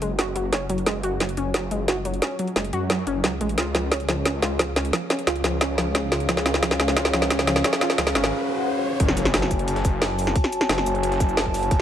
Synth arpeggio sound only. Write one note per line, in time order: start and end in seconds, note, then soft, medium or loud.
0.02 0.10 G#3 medium
0.19 0.27 F#4 medium
0.36 0.44 F#3 medium
0.53 0.65 C#4 medium
0.69 0.78 F#3 medium
0.87 0.95 G#3 medium
1.03 1.12 F#4 medium
1.20 1.29 F#3 medium
1.37 1.50 C#4 medium
1.54 1.63 F#3 medium
1.71 1.80 G#3 medium
1.88 1.97 F#4 medium
2.05 2.14 F#3 medium
2.22 2.35 C#4 medium
2.39 2.48 F#3 medium
2.56 2.65 G#3 medium
2.73 2.82 F#4 medium
2.90 2.98 F#3 medium
3.07 3.20 C#4 medium
3.24 3.32 F#3 medium
3.41 3.49 G#3 medium
3.58 3.66 F4 medium
3.75 3.83 F3 medium
3.92 4.04 C#4 medium
4.09 4.17 F3 medium
4.26 4.31 C#4 medium
4.42 4.51 F4 medium
4.59 4.68 F3 medium
4.76 4.89 C#4 medium
4.93 5.02 F3 medium
5.10 5.15 C#4 medium
5.27 5.36 F4 medium
5.44 5.53 F3 medium
5.61 5.74 C#4 medium
5.78 5.87 F3 medium
5.95 6.00 C#4 medium
6.12 6.20 F4 medium
6.29 6.37 F3 medium
6.46 6.59 C#4 medium
6.63 6.71 F3 medium
6.80 6.85 C#4 medium
6.97 7.05 F4 medium
7.14 7.22 F3 medium
7.31 7.43 C#4 medium
7.47 7.56 F3 medium
7.64 7.70 C#4 medium
7.81 7.90 F4 medium
7.98 8.07 F3 medium
8.15 8.28 C#4 medium